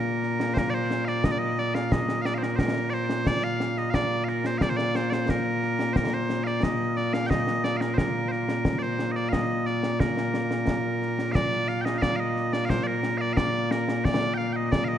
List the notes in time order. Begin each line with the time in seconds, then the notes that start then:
Already playing: A#2 A#3 A#4
0.23 snare
0.40 snare
0.54 C5, concert bass drum, snare
0.58 A#4
0.70 D5, snare
0.74 C5
0.91 snare
1.05 D5 F5, snare
1.24 D#5, concert bass drum, snare
1.32 D5
1.39 D#5
1.58 D5, snare
1.75 F5, snare
1.92 D#5, concert bass drum, snare
2.09 snare
2.22 F5, snare
2.26 D5
2.34 C5 F5
2.43 A#4, snare
2.56 A#4 C5, concert bass drum, snare
2.90 C5 D5, snare
3.10 snare
3.27 D5, concert bass drum, snare
3.44 F5, snare
3.60 snare
3.77 D#5, snare
3.90 F5, concert bass drum, snare
3.95 D5
4.24 F5, snare
4.29 A#4
4.44 C5, snare
4.58 D5 F5, concert bass drum, snare
4.69 C5
4.77 D5, snare
4.95 C5, snare
5.10 C5 D5, snare
5.29 A#4, concert bass drum, snare
5.63 snare
5.79 snare
5.93 A#4 C5, concert bass drum, snare
6.12 C5, snare
6.30 snare
6.44 D5 F5, snare
6.63 D#5, concert bass drum, snare
6.97 D5, snare
7.14 F5, snare
7.26 D#5 G5
7.31 concert bass drum, snare
7.47 snare
7.64 D5, snare
7.77 A#4 F5, snare
7.94 A#4 C5
7.98 concert bass drum, snare
8.28 A#4 C5
8.32 snare
8.49 snare
8.65 concert bass drum, snare
8.79 C5 D5, snare
8.99 snare
9.12 D#5
9.16 D5, snare
9.29 D#5 F5, concert bass drum, snare
9.66 D5, snare
9.83 snare
10.00 A#4, concert bass drum, snare
10.17 snare
10.34 snare
10.51 snare
10.67 concert bass drum, snare
11.02 snare
11.19 snare
11.32 D5 F5, concert bass drum, snare
11.52 snare
11.68 F5, snare
11.81 D#5 G5
11.86 snare
11.98 F5
12.02 D5, concert bass drum, snare
12.16 D#5 F5
12.37 snare
12.53 D5, snare
12.65 F5
12.70 C5, concert bass drum, snare
12.84 A#4 D5
13.03 snare
13.18 D5 F5
13.33 D5 F5, concert bass drum, snare
13.71 A#4, snare
13.88 snare
14.05 D5, concert bass drum, snare
14.22 snare
14.34 F5 G5
14.39 snare
14.53 D#5 G5
14.72 D5, concert bass drum, snare
14.85 D#5 F5